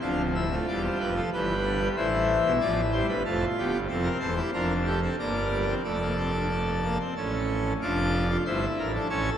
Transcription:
0.01 D1 D2 F3 D4 F5
0.35 E4 E5
0.51 A3 F4
0.68 E1 E2 G3 D5
0.84 C5
1.00 F1 F2 B4
1.15 F3 A4
1.33 G1 G2 E3 G4 B4
1.65 D3
1.82 G3
1.96 A1 A2 E3 E4 C5
2.44 B1 B2
2.60 A1 A2 F3 D5
2.92 G3 C5
3.08 G1 G2 B4
3.25 F1 F2 A3 F4 A4
3.58 D1 D2 B3 G4
3.74 G1 G2
3.89 F1 F2 C4 A4
4.03 A#4
4.20 E1 E2 A4 C5
4.36 E4 G4
4.53 F1 F2 D4 F4 A#4
4.85 G4 A4
5.02 C4 A4
5.19 G1 G2 A#3 A#4 D5
5.50 G3
5.68 C4
5.83 F1 F2 A3 A4 D5
6.01 A#3
6.17 C4
6.34 D4
6.51 A3
6.84 A#3
7.00 C4
7.16 A1 A2 C#4 A4
7.81 F1 F2 D4 F4 D5
8.30 F4
8.45 G1 G2 E4 C5
8.77 A1 A2 A#4
8.94 D4 A4
9.09 A1 A2 C#4 A4 C#5

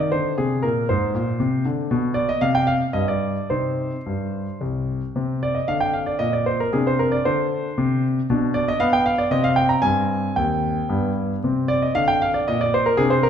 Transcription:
Already playing: D#3
0.00 D5
0.12 D3 C5
0.38 C3 G#4
0.63 A#2 A#4
0.89 G#2 C5
1.15 A#2
1.40 C3
1.65 D3
1.91 B2
2.14 D5
2.29 D#5
2.41 C3 F5
2.55 G5
2.67 F5
2.93 G2 D#5
3.08 D5
3.50 C3 C4 D#4 C5
4.06 G2
4.61 C2
5.16 C3 C4
5.43 D5
5.55 D#5
5.68 D3 F5
5.81 G5
5.93 F5
6.06 D5
6.19 A#2 D#5
6.33 D5
6.46 C5
6.60 A#4
6.73 C3 D4 G#4
6.87 C5
6.99 A#4
7.12 D5
7.25 D3 C5
7.78 C3
8.30 B2 D4
8.54 D5
8.68 D#5
8.80 B3 F5
8.93 G5
9.06 F5
9.18 D5
9.31 C3 C4 D#5
9.44 F5
9.56 G5
9.69 A#5
9.82 G2 C4 G#5
10.36 D#2 G5
10.89 G2 B3
11.44 C3 C4
11.68 D5
11.82 D#5
11.95 D3 F5
12.08 G5
12.22 F5
12.34 D5
12.48 A#2 D#5
12.61 D5
12.74 C5
12.86 A#4
12.97 C3 D4 G#4
13.10 C5
13.23 A#4

